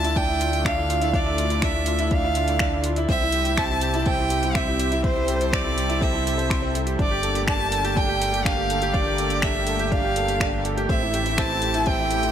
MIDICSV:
0, 0, Header, 1, 6, 480
1, 0, Start_track
1, 0, Key_signature, -1, "minor"
1, 0, Tempo, 487805
1, 1117, Time_signature, 4, 2, 24, 8
1, 12120, End_track
2, 0, Start_track
2, 0, Title_t, "Violin"
2, 0, Program_c, 0, 40
2, 0, Note_on_c, 0, 81, 114
2, 160, Note_on_c, 0, 79, 111
2, 175, Note_off_c, 0, 81, 0
2, 648, Note_on_c, 0, 77, 96
2, 662, Note_off_c, 0, 79, 0
2, 1136, Note_on_c, 0, 74, 99
2, 1150, Note_off_c, 0, 77, 0
2, 1605, Note_on_c, 0, 76, 95
2, 1619, Note_off_c, 0, 74, 0
2, 2090, Note_on_c, 0, 77, 89
2, 2105, Note_off_c, 0, 76, 0
2, 2804, Note_off_c, 0, 77, 0
2, 3041, Note_on_c, 0, 76, 116
2, 3514, Note_on_c, 0, 81, 111
2, 3529, Note_off_c, 0, 76, 0
2, 3930, Note_off_c, 0, 81, 0
2, 3930, Note_on_c, 0, 81, 77
2, 3994, Note_on_c, 0, 79, 104
2, 4009, Note_off_c, 0, 81, 0
2, 4482, Note_on_c, 0, 76, 96
2, 4497, Note_off_c, 0, 79, 0
2, 4960, Note_off_c, 0, 76, 0
2, 4966, Note_on_c, 0, 72, 105
2, 5448, Note_on_c, 0, 74, 100
2, 5462, Note_off_c, 0, 72, 0
2, 5929, Note_on_c, 0, 76, 89
2, 5943, Note_off_c, 0, 74, 0
2, 6643, Note_off_c, 0, 76, 0
2, 6900, Note_on_c, 0, 74, 100
2, 7336, Note_off_c, 0, 74, 0
2, 7369, Note_on_c, 0, 81, 108
2, 7846, Note_on_c, 0, 79, 107
2, 7860, Note_off_c, 0, 81, 0
2, 8316, Note_on_c, 0, 77, 105
2, 8330, Note_off_c, 0, 79, 0
2, 8791, Note_on_c, 0, 74, 98
2, 8806, Note_off_c, 0, 77, 0
2, 9273, Note_on_c, 0, 76, 96
2, 9288, Note_off_c, 0, 74, 0
2, 9760, Note_on_c, 0, 77, 93
2, 9774, Note_off_c, 0, 76, 0
2, 10478, Note_off_c, 0, 77, 0
2, 10720, Note_on_c, 0, 76, 106
2, 11204, Note_on_c, 0, 81, 113
2, 11218, Note_off_c, 0, 76, 0
2, 11683, Note_on_c, 0, 79, 117
2, 11698, Note_off_c, 0, 81, 0
2, 12120, Note_off_c, 0, 79, 0
2, 12120, End_track
3, 0, Start_track
3, 0, Title_t, "Grand piano"
3, 0, Program_c, 1, 0
3, 0, Control_c, 1, 64, 127
3, 0, Note_on_c, 1, 62, 81
3, 0, Note_on_c, 1, 64, 72
3, 0, Note_on_c, 1, 65, 72
3, 40, Note_off_c, 1, 64, 0
3, 40, Note_on_c, 1, 64, 100
3, 153, Note_off_c, 1, 64, 0
3, 163, Note_off_c, 1, 62, 0
3, 163, Note_on_c, 1, 62, 95
3, 274, Note_off_c, 1, 62, 0
3, 283, Note_on_c, 1, 64, 94
3, 394, Note_off_c, 1, 64, 0
3, 404, Note_off_c, 1, 65, 0
3, 404, Note_on_c, 1, 65, 70
3, 514, Note_off_c, 1, 65, 0
3, 521, Note_on_c, 1, 64, 80
3, 633, Note_off_c, 1, 64, 0
3, 645, Note_on_c, 1, 62, 80
3, 710, Note_off_c, 1, 62, 0
3, 763, Note_on_c, 1, 64, 75
3, 828, Note_off_c, 1, 64, 0
3, 884, Note_on_c, 1, 65, 67
3, 949, Note_off_c, 1, 65, 0
3, 1003, Note_on_c, 1, 64, 102
3, 1114, Note_off_c, 1, 64, 0
3, 1124, Note_on_c, 1, 62, 102
3, 1235, Note_off_c, 1, 62, 0
3, 1238, Note_on_c, 1, 64, 95
3, 1352, Note_off_c, 1, 64, 0
3, 1364, Note_on_c, 1, 65, 72
3, 1475, Note_off_c, 1, 65, 0
3, 1480, Note_on_c, 1, 64, 78
3, 1592, Note_off_c, 1, 64, 0
3, 1607, Note_on_c, 1, 62, 88
3, 1670, Note_off_c, 1, 62, 0
3, 1723, Note_on_c, 1, 64, 74
3, 1788, Note_off_c, 1, 64, 0
3, 1842, Note_on_c, 1, 65, 71
3, 1908, Note_off_c, 1, 65, 0
3, 1964, Note_on_c, 1, 64, 102
3, 2075, Note_off_c, 1, 64, 0
3, 2086, Note_on_c, 1, 62, 94
3, 2196, Note_off_c, 1, 62, 0
3, 2208, Note_on_c, 1, 64, 100
3, 2317, Note_off_c, 1, 64, 0
3, 2329, Note_on_c, 1, 65, 70
3, 2437, Note_off_c, 1, 65, 0
3, 2451, Note_on_c, 1, 64, 78
3, 2558, Note_off_c, 1, 64, 0
3, 2570, Note_on_c, 1, 62, 87
3, 2632, Note_off_c, 1, 62, 0
3, 2690, Note_on_c, 1, 64, 75
3, 2752, Note_off_c, 1, 64, 0
3, 2811, Note_on_c, 1, 65, 71
3, 2873, Note_off_c, 1, 65, 0
3, 2927, Note_on_c, 1, 64, 102
3, 3036, Note_off_c, 1, 64, 0
3, 3045, Note_on_c, 1, 60, 106
3, 3049, Control_c, 1, 64, 0
3, 3155, Note_off_c, 1, 60, 0
3, 3167, Note_on_c, 1, 64, 92
3, 3247, Control_c, 1, 64, 127
3, 3276, Note_off_c, 1, 64, 0
3, 3285, Note_on_c, 1, 67, 77
3, 3395, Note_off_c, 1, 67, 0
3, 3407, Note_on_c, 1, 64, 79
3, 3516, Note_off_c, 1, 64, 0
3, 3524, Note_on_c, 1, 60, 82
3, 3589, Note_off_c, 1, 60, 0
3, 3642, Note_on_c, 1, 64, 74
3, 3708, Note_off_c, 1, 64, 0
3, 3761, Note_on_c, 1, 67, 73
3, 3828, Note_off_c, 1, 67, 0
3, 3879, Note_on_c, 1, 64, 103
3, 3992, Note_off_c, 1, 64, 0
3, 4003, Note_on_c, 1, 60, 99
3, 4114, Note_off_c, 1, 60, 0
3, 4122, Note_on_c, 1, 64, 96
3, 4234, Note_off_c, 1, 64, 0
3, 4245, Note_on_c, 1, 67, 77
3, 4355, Note_off_c, 1, 67, 0
3, 4363, Note_on_c, 1, 64, 76
3, 4474, Note_off_c, 1, 64, 0
3, 4479, Note_on_c, 1, 60, 80
3, 4546, Note_off_c, 1, 60, 0
3, 4597, Note_on_c, 1, 64, 77
3, 4666, Note_off_c, 1, 64, 0
3, 4716, Note_on_c, 1, 67, 72
3, 4785, Note_off_c, 1, 67, 0
3, 4837, Note_on_c, 1, 64, 103
3, 4950, Note_on_c, 1, 60, 98
3, 4951, Note_off_c, 1, 64, 0
3, 5068, Note_off_c, 1, 60, 0
3, 5071, Note_on_c, 1, 64, 103
3, 5188, Note_off_c, 1, 64, 0
3, 5194, Note_on_c, 1, 67, 75
3, 5310, Note_off_c, 1, 67, 0
3, 5311, Note_on_c, 1, 64, 77
3, 5428, Note_off_c, 1, 64, 0
3, 5436, Note_on_c, 1, 60, 86
3, 5505, Note_off_c, 1, 60, 0
3, 5551, Note_on_c, 1, 64, 76
3, 5623, Note_off_c, 1, 64, 0
3, 5673, Note_on_c, 1, 67, 72
3, 5744, Note_off_c, 1, 67, 0
3, 5797, Note_on_c, 1, 64, 105
3, 5911, Note_off_c, 1, 64, 0
3, 5914, Note_on_c, 1, 60, 95
3, 6030, Note_off_c, 1, 60, 0
3, 6031, Note_on_c, 1, 64, 100
3, 6148, Note_off_c, 1, 64, 0
3, 6152, Note_on_c, 1, 67, 70
3, 6223, Note_off_c, 1, 67, 0
3, 6273, Note_on_c, 1, 72, 78
3, 6389, Note_off_c, 1, 72, 0
3, 6395, Note_on_c, 1, 84, 95
3, 6510, Note_off_c, 1, 84, 0
3, 6516, Note_on_c, 1, 60, 80
3, 6631, Note_off_c, 1, 60, 0
3, 6639, Note_on_c, 1, 64, 70
3, 6752, Note_off_c, 1, 64, 0
3, 6753, Note_on_c, 1, 67, 78
3, 6869, Note_off_c, 1, 67, 0
3, 6874, Note_on_c, 1, 62, 102
3, 6891, Control_c, 1, 64, 0
3, 6990, Note_off_c, 1, 62, 0
3, 6997, Note_on_c, 1, 67, 88
3, 7061, Control_c, 1, 64, 127
3, 7111, Note_off_c, 1, 67, 0
3, 7114, Note_on_c, 1, 69, 76
3, 7229, Note_off_c, 1, 69, 0
3, 7232, Note_on_c, 1, 67, 76
3, 7348, Note_off_c, 1, 67, 0
3, 7352, Note_on_c, 1, 62, 87
3, 7423, Note_off_c, 1, 62, 0
3, 7474, Note_on_c, 1, 67, 75
3, 7544, Note_off_c, 1, 67, 0
3, 7592, Note_on_c, 1, 69, 72
3, 7663, Note_off_c, 1, 69, 0
3, 7718, Note_on_c, 1, 67, 105
3, 7831, Note_off_c, 1, 67, 0
3, 7834, Note_on_c, 1, 62, 96
3, 7950, Note_off_c, 1, 62, 0
3, 7955, Note_on_c, 1, 67, 101
3, 8070, Note_off_c, 1, 67, 0
3, 8076, Note_on_c, 1, 69, 72
3, 8191, Note_off_c, 1, 69, 0
3, 8202, Note_on_c, 1, 67, 74
3, 8314, Note_off_c, 1, 67, 0
3, 8320, Note_on_c, 1, 62, 79
3, 8387, Note_off_c, 1, 62, 0
3, 8441, Note_on_c, 1, 67, 77
3, 8507, Note_off_c, 1, 67, 0
3, 8561, Note_on_c, 1, 69, 67
3, 8627, Note_off_c, 1, 69, 0
3, 8682, Note_on_c, 1, 67, 107
3, 8793, Note_off_c, 1, 67, 0
3, 8801, Note_on_c, 1, 62, 100
3, 8913, Note_off_c, 1, 62, 0
3, 8923, Note_on_c, 1, 67, 98
3, 9034, Note_off_c, 1, 67, 0
3, 9041, Note_on_c, 1, 69, 73
3, 9153, Note_off_c, 1, 69, 0
3, 9165, Note_on_c, 1, 67, 75
3, 9275, Note_off_c, 1, 67, 0
3, 9280, Note_on_c, 1, 62, 86
3, 9347, Note_off_c, 1, 62, 0
3, 9400, Note_on_c, 1, 67, 74
3, 9467, Note_off_c, 1, 67, 0
3, 9521, Note_on_c, 1, 69, 72
3, 9588, Note_off_c, 1, 69, 0
3, 9641, Note_on_c, 1, 67, 104
3, 9753, Note_off_c, 1, 67, 0
3, 9758, Note_on_c, 1, 62, 92
3, 9872, Note_off_c, 1, 62, 0
3, 9880, Note_on_c, 1, 67, 97
3, 9993, Note_off_c, 1, 67, 0
3, 10003, Note_on_c, 1, 69, 75
3, 10114, Note_off_c, 1, 69, 0
3, 10122, Note_on_c, 1, 67, 76
3, 10234, Note_off_c, 1, 67, 0
3, 10241, Note_on_c, 1, 62, 85
3, 10307, Note_off_c, 1, 62, 0
3, 10362, Note_on_c, 1, 67, 75
3, 10428, Note_off_c, 1, 67, 0
3, 10482, Note_on_c, 1, 69, 78
3, 10548, Note_off_c, 1, 69, 0
3, 10600, Note_on_c, 1, 67, 106
3, 10712, Note_off_c, 1, 67, 0
3, 10721, Note_on_c, 1, 60, 104
3, 10728, Control_c, 1, 64, 0
3, 10833, Note_off_c, 1, 60, 0
3, 10840, Note_on_c, 1, 64, 98
3, 10911, Control_c, 1, 64, 127
3, 10953, Note_off_c, 1, 64, 0
3, 10962, Note_on_c, 1, 67, 77
3, 11073, Note_off_c, 1, 67, 0
3, 11079, Note_on_c, 1, 64, 74
3, 11192, Note_off_c, 1, 64, 0
3, 11205, Note_on_c, 1, 60, 88
3, 11270, Note_off_c, 1, 60, 0
3, 11327, Note_on_c, 1, 64, 73
3, 11390, Note_off_c, 1, 64, 0
3, 11444, Note_on_c, 1, 67, 79
3, 11509, Note_off_c, 1, 67, 0
3, 11559, Note_on_c, 1, 64, 105
3, 11672, Note_off_c, 1, 64, 0
3, 11683, Note_on_c, 1, 60, 101
3, 11794, Note_off_c, 1, 60, 0
3, 11804, Note_on_c, 1, 64, 93
3, 11915, Note_off_c, 1, 64, 0
3, 11928, Note_on_c, 1, 67, 69
3, 12036, Note_off_c, 1, 67, 0
3, 12045, Note_on_c, 1, 64, 81
3, 12120, Note_off_c, 1, 64, 0
3, 12120, End_track
4, 0, Start_track
4, 0, Title_t, "Analog synth pad"
4, 0, Program_c, 2, 89
4, 0, Note_on_c, 2, 57, 74
4, 0, Note_on_c, 2, 62, 75
4, 2997, Note_off_c, 2, 62, 0
4, 2999, Note_off_c, 2, 57, 0
4, 3037, Note_on_c, 2, 60, 78
4, 3039, Note_on_c, 2, 55, 76
4, 3042, Note_on_c, 2, 67, 85
4, 4941, Note_off_c, 2, 67, 0
4, 4954, Note_on_c, 2, 69, 89
4, 6839, Note_off_c, 2, 60, 0
4, 6840, Note_off_c, 2, 55, 0
4, 6856, Note_off_c, 2, 69, 0
4, 6888, Note_on_c, 2, 57, 80
4, 6891, Note_on_c, 2, 58, 72
4, 6892, Note_on_c, 2, 50, 80
4, 6892, Note_on_c, 2, 67, 91
4, 10686, Note_off_c, 2, 50, 0
4, 10686, Note_off_c, 2, 58, 0
4, 10686, Note_off_c, 2, 67, 0
4, 10727, Note_on_c, 2, 60, 78
4, 10730, Note_on_c, 2, 52, 82
4, 10736, Note_on_c, 2, 67, 92
4, 12120, Note_off_c, 2, 52, 0
4, 12120, Note_off_c, 2, 57, 0
4, 12120, Note_off_c, 2, 60, 0
4, 12120, Note_off_c, 2, 67, 0
4, 12120, End_track
5, 0, Start_track
5, 0, Title_t, "Analog synth bass"
5, 0, Program_c, 3, 38
5, 0, Note_on_c, 3, 38, 92
5, 3014, Note_off_c, 3, 38, 0
5, 3039, Note_on_c, 3, 36, 87
5, 6854, Note_off_c, 3, 36, 0
5, 6878, Note_on_c, 3, 31, 85
5, 10694, Note_off_c, 3, 31, 0
5, 10718, Note_on_c, 3, 33, 89
5, 12120, Note_off_c, 3, 33, 0
5, 12120, End_track
6, 0, Start_track
6, 0, Title_t, "Drums"
6, 43, Note_on_c, 9, 42, 42
6, 142, Note_off_c, 9, 42, 0
6, 159, Note_on_c, 9, 36, 103
6, 164, Note_on_c, 9, 42, 31
6, 257, Note_off_c, 9, 36, 0
6, 263, Note_off_c, 9, 42, 0
6, 402, Note_on_c, 9, 42, 70
6, 500, Note_off_c, 9, 42, 0
6, 523, Note_on_c, 9, 42, 43
6, 621, Note_off_c, 9, 42, 0
6, 640, Note_on_c, 9, 36, 104
6, 648, Note_on_c, 9, 26, 99
6, 648, Note_on_c, 9, 42, 32
6, 738, Note_off_c, 9, 36, 0
6, 746, Note_off_c, 9, 26, 0
6, 746, Note_off_c, 9, 42, 0
6, 886, Note_on_c, 9, 42, 74
6, 984, Note_off_c, 9, 42, 0
6, 999, Note_on_c, 9, 42, 42
6, 1098, Note_off_c, 9, 42, 0
6, 1118, Note_on_c, 9, 36, 114
6, 1122, Note_on_c, 9, 42, 31
6, 1216, Note_off_c, 9, 36, 0
6, 1220, Note_off_c, 9, 42, 0
6, 1360, Note_on_c, 9, 42, 69
6, 1458, Note_off_c, 9, 42, 0
6, 1479, Note_on_c, 9, 42, 44
6, 1577, Note_off_c, 9, 42, 0
6, 1596, Note_on_c, 9, 26, 96
6, 1596, Note_on_c, 9, 42, 33
6, 1598, Note_on_c, 9, 36, 106
6, 1694, Note_off_c, 9, 26, 0
6, 1694, Note_off_c, 9, 42, 0
6, 1696, Note_off_c, 9, 36, 0
6, 1830, Note_on_c, 9, 42, 75
6, 1929, Note_off_c, 9, 42, 0
6, 1955, Note_on_c, 9, 42, 43
6, 2053, Note_off_c, 9, 42, 0
6, 2075, Note_on_c, 9, 42, 31
6, 2079, Note_on_c, 9, 36, 100
6, 2174, Note_off_c, 9, 42, 0
6, 2177, Note_off_c, 9, 36, 0
6, 2314, Note_on_c, 9, 42, 78
6, 2412, Note_off_c, 9, 42, 0
6, 2437, Note_on_c, 9, 42, 43
6, 2535, Note_off_c, 9, 42, 0
6, 2552, Note_on_c, 9, 26, 98
6, 2552, Note_on_c, 9, 42, 31
6, 2559, Note_on_c, 9, 36, 108
6, 2651, Note_off_c, 9, 26, 0
6, 2651, Note_off_c, 9, 42, 0
6, 2657, Note_off_c, 9, 36, 0
6, 2791, Note_on_c, 9, 42, 78
6, 2889, Note_off_c, 9, 42, 0
6, 2917, Note_on_c, 9, 42, 44
6, 3015, Note_off_c, 9, 42, 0
6, 3038, Note_on_c, 9, 36, 119
6, 3038, Note_on_c, 9, 42, 32
6, 3136, Note_off_c, 9, 36, 0
6, 3136, Note_off_c, 9, 42, 0
6, 3271, Note_on_c, 9, 42, 74
6, 3369, Note_off_c, 9, 42, 0
6, 3396, Note_on_c, 9, 42, 48
6, 3494, Note_off_c, 9, 42, 0
6, 3518, Note_on_c, 9, 26, 99
6, 3518, Note_on_c, 9, 42, 32
6, 3519, Note_on_c, 9, 36, 105
6, 3616, Note_off_c, 9, 26, 0
6, 3616, Note_off_c, 9, 42, 0
6, 3617, Note_off_c, 9, 36, 0
6, 3753, Note_on_c, 9, 42, 81
6, 3851, Note_off_c, 9, 42, 0
6, 3874, Note_on_c, 9, 42, 40
6, 3973, Note_off_c, 9, 42, 0
6, 3993, Note_on_c, 9, 42, 32
6, 3997, Note_on_c, 9, 36, 108
6, 4091, Note_off_c, 9, 42, 0
6, 4096, Note_off_c, 9, 36, 0
6, 4234, Note_on_c, 9, 42, 78
6, 4332, Note_off_c, 9, 42, 0
6, 4358, Note_on_c, 9, 42, 42
6, 4456, Note_off_c, 9, 42, 0
6, 4478, Note_on_c, 9, 26, 99
6, 4478, Note_on_c, 9, 36, 113
6, 4478, Note_on_c, 9, 42, 33
6, 4577, Note_off_c, 9, 26, 0
6, 4577, Note_off_c, 9, 36, 0
6, 4577, Note_off_c, 9, 42, 0
6, 4718, Note_on_c, 9, 42, 78
6, 4817, Note_off_c, 9, 42, 0
6, 4840, Note_on_c, 9, 42, 43
6, 4938, Note_off_c, 9, 42, 0
6, 4959, Note_on_c, 9, 36, 110
6, 4959, Note_on_c, 9, 42, 32
6, 5057, Note_off_c, 9, 36, 0
6, 5058, Note_off_c, 9, 42, 0
6, 5196, Note_on_c, 9, 42, 78
6, 5294, Note_off_c, 9, 42, 0
6, 5322, Note_on_c, 9, 42, 43
6, 5421, Note_off_c, 9, 42, 0
6, 5440, Note_on_c, 9, 36, 114
6, 5445, Note_on_c, 9, 26, 92
6, 5445, Note_on_c, 9, 42, 33
6, 5538, Note_off_c, 9, 36, 0
6, 5544, Note_off_c, 9, 26, 0
6, 5544, Note_off_c, 9, 42, 0
6, 5684, Note_on_c, 9, 42, 73
6, 5783, Note_off_c, 9, 42, 0
6, 5802, Note_on_c, 9, 42, 43
6, 5901, Note_off_c, 9, 42, 0
6, 5920, Note_on_c, 9, 36, 107
6, 5927, Note_on_c, 9, 42, 33
6, 6018, Note_off_c, 9, 36, 0
6, 6025, Note_off_c, 9, 42, 0
6, 6170, Note_on_c, 9, 42, 76
6, 6268, Note_off_c, 9, 42, 0
6, 6288, Note_on_c, 9, 42, 42
6, 6386, Note_off_c, 9, 42, 0
6, 6401, Note_on_c, 9, 36, 105
6, 6407, Note_on_c, 9, 26, 96
6, 6407, Note_on_c, 9, 42, 33
6, 6499, Note_off_c, 9, 36, 0
6, 6505, Note_off_c, 9, 26, 0
6, 6505, Note_off_c, 9, 42, 0
6, 6644, Note_on_c, 9, 42, 74
6, 6742, Note_off_c, 9, 42, 0
6, 6758, Note_on_c, 9, 42, 47
6, 6857, Note_off_c, 9, 42, 0
6, 6879, Note_on_c, 9, 36, 115
6, 6880, Note_on_c, 9, 42, 29
6, 6978, Note_off_c, 9, 36, 0
6, 6979, Note_off_c, 9, 42, 0
6, 7116, Note_on_c, 9, 42, 73
6, 7214, Note_off_c, 9, 42, 0
6, 7236, Note_on_c, 9, 42, 45
6, 7334, Note_off_c, 9, 42, 0
6, 7356, Note_on_c, 9, 26, 85
6, 7356, Note_on_c, 9, 42, 31
6, 7358, Note_on_c, 9, 36, 106
6, 7455, Note_off_c, 9, 26, 0
6, 7455, Note_off_c, 9, 42, 0
6, 7456, Note_off_c, 9, 36, 0
6, 7596, Note_on_c, 9, 42, 75
6, 7694, Note_off_c, 9, 42, 0
6, 7720, Note_on_c, 9, 42, 43
6, 7819, Note_off_c, 9, 42, 0
6, 7839, Note_on_c, 9, 36, 102
6, 7841, Note_on_c, 9, 42, 30
6, 7937, Note_off_c, 9, 36, 0
6, 7939, Note_off_c, 9, 42, 0
6, 8084, Note_on_c, 9, 42, 79
6, 8182, Note_off_c, 9, 42, 0
6, 8205, Note_on_c, 9, 42, 43
6, 8303, Note_off_c, 9, 42, 0
6, 8319, Note_on_c, 9, 36, 107
6, 8326, Note_on_c, 9, 26, 85
6, 8326, Note_on_c, 9, 42, 31
6, 8417, Note_off_c, 9, 36, 0
6, 8425, Note_off_c, 9, 26, 0
6, 8425, Note_off_c, 9, 42, 0
6, 8561, Note_on_c, 9, 42, 72
6, 8660, Note_off_c, 9, 42, 0
6, 8676, Note_on_c, 9, 42, 44
6, 8775, Note_off_c, 9, 42, 0
6, 8799, Note_on_c, 9, 36, 110
6, 8799, Note_on_c, 9, 42, 29
6, 8897, Note_off_c, 9, 36, 0
6, 8898, Note_off_c, 9, 42, 0
6, 9036, Note_on_c, 9, 42, 69
6, 9135, Note_off_c, 9, 42, 0
6, 9153, Note_on_c, 9, 42, 42
6, 9252, Note_off_c, 9, 42, 0
6, 9272, Note_on_c, 9, 26, 90
6, 9272, Note_on_c, 9, 42, 30
6, 9279, Note_on_c, 9, 36, 107
6, 9370, Note_off_c, 9, 26, 0
6, 9370, Note_off_c, 9, 42, 0
6, 9377, Note_off_c, 9, 36, 0
6, 9512, Note_on_c, 9, 42, 73
6, 9610, Note_off_c, 9, 42, 0
6, 9637, Note_on_c, 9, 42, 39
6, 9736, Note_off_c, 9, 42, 0
6, 9759, Note_on_c, 9, 36, 94
6, 9760, Note_on_c, 9, 42, 30
6, 9857, Note_off_c, 9, 36, 0
6, 9859, Note_off_c, 9, 42, 0
6, 9998, Note_on_c, 9, 42, 78
6, 10097, Note_off_c, 9, 42, 0
6, 10120, Note_on_c, 9, 42, 40
6, 10218, Note_off_c, 9, 42, 0
6, 10237, Note_on_c, 9, 36, 104
6, 10242, Note_on_c, 9, 26, 93
6, 10242, Note_on_c, 9, 42, 30
6, 10336, Note_off_c, 9, 36, 0
6, 10341, Note_off_c, 9, 26, 0
6, 10341, Note_off_c, 9, 42, 0
6, 10480, Note_on_c, 9, 42, 65
6, 10578, Note_off_c, 9, 42, 0
6, 10603, Note_on_c, 9, 42, 42
6, 10702, Note_off_c, 9, 42, 0
6, 10719, Note_on_c, 9, 36, 107
6, 10721, Note_on_c, 9, 42, 29
6, 10817, Note_off_c, 9, 36, 0
6, 10820, Note_off_c, 9, 42, 0
6, 10959, Note_on_c, 9, 42, 70
6, 11058, Note_off_c, 9, 42, 0
6, 11078, Note_on_c, 9, 42, 42
6, 11177, Note_off_c, 9, 42, 0
6, 11197, Note_on_c, 9, 26, 89
6, 11197, Note_on_c, 9, 42, 30
6, 11198, Note_on_c, 9, 36, 103
6, 11296, Note_off_c, 9, 26, 0
6, 11296, Note_off_c, 9, 42, 0
6, 11297, Note_off_c, 9, 36, 0
6, 11432, Note_on_c, 9, 42, 68
6, 11531, Note_off_c, 9, 42, 0
6, 11553, Note_on_c, 9, 42, 41
6, 11651, Note_off_c, 9, 42, 0
6, 11669, Note_on_c, 9, 42, 30
6, 11679, Note_on_c, 9, 36, 95
6, 11768, Note_off_c, 9, 42, 0
6, 11777, Note_off_c, 9, 36, 0
6, 11912, Note_on_c, 9, 42, 70
6, 12010, Note_off_c, 9, 42, 0
6, 12035, Note_on_c, 9, 42, 39
6, 12120, Note_off_c, 9, 42, 0
6, 12120, End_track
0, 0, End_of_file